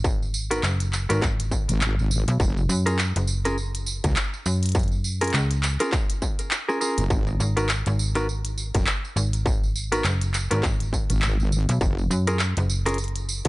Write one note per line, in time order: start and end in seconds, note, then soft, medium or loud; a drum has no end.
0.00 0.62 G#1 medium
0.04 kick loud
0.04 tambourine medium
0.22 tambourine soft
0.34 tambourine medium
0.51 0.62 B3 medium
0.51 0.62 D#4 medium
0.51 0.62 F#4 medium
0.51 0.62 A#4 loud
0.51 closed hi-hat medium
0.51 tambourine soft
0.63 1.07 F#1 loud
0.63 clap loud
0.63 tambourine medium
0.80 closed hi-hat medium
0.80 tambourine soft
0.93 clap medium
0.93 tambourine loud
1.09 1.66 G#1 loud
1.09 1.21 B3 medium
1.09 1.21 D#4 medium
1.09 1.20 F#4 medium
1.09 1.20 A#4 loud
1.09 closed hi-hat medium
1.09 tambourine soft
1.22 kick loud
1.22 clap medium
1.22 tambourine medium
1.40 closed hi-hat medium
1.40 tambourine soft
1.51 kick medium
1.51 tambourine medium
1.69 2.25 G#1 medium
1.69 closed hi-hat medium
1.69 tambourine soft
1.81 clap loud
1.81 tambourine soft
1.99 tambourine soft
2.11 tambourine loud
2.28 2.38 B1 loud
2.28 closed hi-hat medium
2.28 tambourine soft
2.40 2.67 F#1 loud
2.40 kick loud
2.40 tambourine medium
2.57 tambourine soft
2.69 3.13 F#2 medium
2.69 tambourine loud
2.86 2.97 C#4 medium
2.86 2.97 F4 medium
2.86 2.97 G#4 medium
2.86 2.97 A#4 loud
2.86 closed hi-hat medium
2.86 tambourine soft
2.99 clap loud
2.99 tambourine medium
3.16 4.02 F#1 loud
3.16 closed hi-hat medium
3.16 tambourine soft
3.27 tambourine medium
3.45 3.56 C#4 medium
3.45 3.56 F4 medium
3.45 3.56 G#4 medium
3.45 3.56 A#4 medium
3.45 snare soft
3.45 closed hi-hat medium
3.45 tambourine soft
3.58 tambourine soft
3.75 closed hi-hat medium
3.75 tambourine soft
3.86 tambourine loud
4.04 4.14 C#2 loud
4.04 kick loud
4.04 closed hi-hat medium
4.04 tambourine soft
4.16 clap loud
4.16 tambourine medium
4.33 tambourine soft
4.46 5.32 F#2 medium
4.46 tambourine loud
4.63 closed hi-hat medium
4.63 tambourine soft
4.66 closed hi-hat medium
4.69 closed hi-hat soft
4.72 closed hi-hat soft
4.75 kick loud
4.75 closed hi-hat soft
4.75 tambourine medium
4.79 closed hi-hat soft
4.83 closed hi-hat soft
4.88 closed hi-hat soft
4.88 tambourine soft
5.04 tambourine medium
5.21 5.32 C#4 medium
5.21 5.32 F4 medium
5.21 5.32 G#4 medium
5.21 5.32 A#4 loud
5.21 closed hi-hat medium
5.21 tambourine soft
5.24 closed hi-hat soft
5.28 closed hi-hat soft
5.30 5.78 C#2 loud
5.30 clap loud
5.30 closed hi-hat soft
5.30 tambourine medium
5.51 closed hi-hat soft
5.51 tambourine soft
5.63 clap medium
5.63 tambourine medium
5.80 5.91 C#4 medium
5.80 5.91 F4 medium
5.80 5.91 G#4 medium
5.80 5.91 A#4 loud
5.80 snare soft
5.80 closed hi-hat medium
5.80 tambourine soft
5.92 kick loud
5.92 clap medium
5.92 tambourine medium
6.09 closed hi-hat medium
6.09 tambourine soft
6.22 kick medium
6.22 tambourine medium
6.39 closed hi-hat medium
6.39 tambourine soft
6.51 clap loud
6.51 tambourine medium
6.69 6.79 C#4 medium
6.69 6.79 F4 medium
6.69 6.79 G#4 medium
6.69 6.79 A#4 medium
6.69 tambourine soft
6.81 7.03 C#4 medium
6.81 7.03 F4 medium
6.81 7.03 G#4 medium
6.81 7.03 A#4 loud
6.81 tambourine loud
6.98 7.08 F#1 medium
6.98 closed hi-hat medium
6.98 tambourine soft
7.10 7.38 G#1 loud
7.10 kick loud
7.10 tambourine medium
7.27 tambourine soft
7.40 7.84 G#1 medium
7.40 tambourine medium
7.57 7.68 B3 medium
7.57 7.68 D#4 medium
7.57 7.68 F#4 medium
7.57 7.68 A#4 medium
7.57 closed hi-hat medium
7.57 tambourine soft
7.69 clap loud
7.69 tambourine medium
7.86 8.72 G#1 loud
7.86 closed hi-hat soft
7.86 tambourine soft
7.99 tambourine medium
8.15 8.26 B3 medium
8.15 8.26 D#4 medium
8.15 8.26 F#4 medium
8.15 8.26 A#4 medium
8.15 snare soft
8.15 closed hi-hat medium
8.15 tambourine soft
8.29 tambourine soft
8.45 closed hi-hat medium
8.45 tambourine soft
8.58 tambourine medium
8.75 8.85 F#1 loud
8.75 kick loud
8.75 closed hi-hat medium
8.75 tambourine soft
8.86 clap loud
8.86 tambourine medium
9.05 tambourine soft
9.16 10.03 G#1 loud
9.16 tambourine medium
9.33 closed hi-hat medium
9.33 tambourine soft
9.46 kick loud
9.46 tambourine medium
9.63 tambourine soft
9.76 tambourine medium
9.92 10.03 B3 medium
9.92 10.03 D#4 medium
9.92 10.03 F#4 medium
9.92 10.03 A#4 loud
9.92 closed hi-hat medium
9.92 tambourine soft
10.04 10.49 F#1 loud
10.04 clap loud
10.04 tambourine medium
10.21 closed hi-hat soft
10.21 tambourine soft
10.34 clap medium
10.34 tambourine medium
10.51 11.08 G#1 loud
10.51 10.62 B3 medium
10.51 10.62 D#4 medium
10.51 10.62 F#4 medium
10.51 10.62 A#4 medium
10.51 closed hi-hat medium
10.51 tambourine soft
10.63 kick loud
10.63 clap medium
10.63 tambourine soft
10.80 closed hi-hat soft
10.80 tambourine soft
10.93 kick medium
10.93 tambourine medium
11.10 11.66 G#1 loud
11.10 closed hi-hat medium
11.10 tambourine soft
11.22 clap loud
11.22 tambourine soft
11.40 tambourine soft
11.52 tambourine medium
11.69 11.79 B1 loud
11.69 closed hi-hat medium
11.69 tambourine soft
11.81 12.08 F#1 medium
11.81 kick loud
11.81 tambourine medium
11.98 tambourine soft
12.11 12.54 F#2 medium
12.11 tambourine medium
12.27 12.38 C#4 medium
12.27 12.38 F4 medium
12.27 12.38 G#4 medium
12.27 12.38 A#4 loud
12.27 closed hi-hat medium
12.27 tambourine soft
12.39 clap loud
12.39 tambourine soft
12.57 13.43 F#1 loud
12.57 closed hi-hat soft
12.57 tambourine soft
12.70 tambourine medium
12.86 12.97 C#4 medium
12.86 12.97 F4 medium
12.86 12.97 G#4 medium
12.86 12.97 A#4 medium
12.86 snare soft
12.86 closed hi-hat medium
12.86 tambourine soft
12.89 closed hi-hat soft
12.94 closed hi-hat soft
12.98 closed hi-hat soft
12.98 tambourine soft
13.04 closed hi-hat soft
13.08 closed hi-hat soft
13.16 closed hi-hat medium
13.16 tambourine soft
13.29 tambourine medium
13.45 13.48 C#2 loud
13.45 closed hi-hat medium